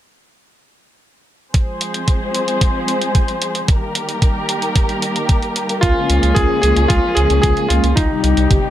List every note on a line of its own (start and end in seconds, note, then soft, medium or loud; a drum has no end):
1.54 3.66 F3 medium
1.54 3.66 G#3 medium
1.54 3.66 C4 medium
1.54 3.66 G#4 medium
1.54 3.66 C5 medium
1.54 kick loud
1.54 closed hi-hat medium
1.81 closed hi-hat medium
1.94 closed hi-hat soft
2.08 kick loud
2.08 closed hi-hat medium
2.35 closed hi-hat medium
2.48 closed hi-hat medium
2.61 kick loud
2.61 closed hi-hat medium
2.88 closed hi-hat medium
3.02 closed hi-hat soft
3.15 kick loud
3.15 closed hi-hat medium
3.28 closed hi-hat soft
3.42 closed hi-hat medium
3.55 closed hi-hat soft
3.68 5.81 D#3 medium
3.68 5.81 G3 medium
3.68 7.93 A#3 medium
3.68 5.81 G4 medium
3.68 5.81 A#4 medium
3.68 kick loud
3.68 closed hi-hat medium
3.95 closed hi-hat medium
4.09 closed hi-hat soft
4.22 kick loud
4.22 closed hi-hat medium
4.49 closed hi-hat medium
4.62 closed hi-hat soft
4.76 kick loud
4.76 closed hi-hat medium
4.89 closed hi-hat soft
5.02 closed hi-hat medium
5.16 closed hi-hat medium
5.29 kick loud
5.29 closed hi-hat medium
5.42 closed hi-hat soft
5.56 closed hi-hat medium
5.69 closed hi-hat medium
5.81 5.93 C#2 loud
5.81 7.95 F3 medium
5.81 7.95 G#3 medium
5.81 7.95 C#4 medium
5.81 6.37 F4 medium
5.81 7.95 G#4 medium
5.81 kick loud
5.81 closed hi-hat medium
5.96 6.08 C#3 medium
5.96 6.08 G#3 medium
5.96 6.08 A#3 medium
5.96 6.07 C#4 medium
5.96 6.08 F4 loud
6.09 6.19 C#2 medium
6.09 6.60 C#3 medium
6.09 6.60 G#3 medium
6.09 6.60 A#3 medium
6.09 6.60 C#4 medium
6.09 6.60 F4 loud
6.09 closed hi-hat medium
6.23 6.33 C#2 medium
6.23 closed hi-hat soft
6.35 6.46 C#2 loud
6.35 6.60 G#4 loud
6.35 kick loud
6.35 closed hi-hat medium
6.62 6.73 C#2 medium
6.62 6.87 C#3 medium
6.62 6.87 G#3 medium
6.62 6.87 A#3 medium
6.62 6.87 C#4 medium
6.62 6.87 F4 medium
6.62 6.90 G#4 loud
6.62 closed hi-hat medium
6.76 6.86 C#2 medium
6.76 closed hi-hat soft
6.88 7.00 C#2 loud
6.88 7.17 F4 medium
6.88 kick loud
6.88 closed hi-hat medium
7.15 7.26 C#2 medium
7.15 7.67 C#3 medium
7.15 7.67 G#3 medium
7.15 7.67 A#3 medium
7.15 7.67 C#4 medium
7.15 7.67 F4 medium
7.15 7.40 G#4 medium
7.15 closed hi-hat medium
7.30 7.40 C#2 medium
7.30 closed hi-hat soft
7.42 7.53 C#2 loud
7.42 7.70 G#4 loud
7.42 kick loud
7.42 closed hi-hat medium
7.57 closed hi-hat soft
7.68 7.80 C#2 medium
7.68 7.94 G#3 medium
7.68 7.94 A#3 medium
7.68 7.94 C#4 medium
7.68 7.97 F4 medium
7.68 7.94 F4 loud
7.68 closed hi-hat medium
7.84 7.93 C#2 medium
7.84 closed hi-hat soft
7.96 8.07 C2 medium
7.96 8.70 C3 medium
7.96 8.70 D#3 medium
7.96 8.70 G3 medium
7.96 8.46 D#4 medium
7.96 8.70 D#4 medium
7.96 8.70 G4 medium
7.96 kick loud
7.96 closed hi-hat medium
8.10 8.22 C3 medium
8.10 8.22 G3 medium
8.10 8.22 C4 medium
8.10 8.22 D#4 medium
8.10 8.22 G4 loud
8.24 8.34 C2 medium
8.24 8.70 C3 medium
8.24 8.70 G3 medium
8.24 8.70 C4 medium
8.24 8.70 D#4 medium
8.24 8.70 G4 loud
8.24 closed hi-hat medium
8.37 8.47 C2 medium
8.37 closed hi-hat soft
8.51 8.60 G1 loud
8.51 kick loud
8.51 closed hi-hat medium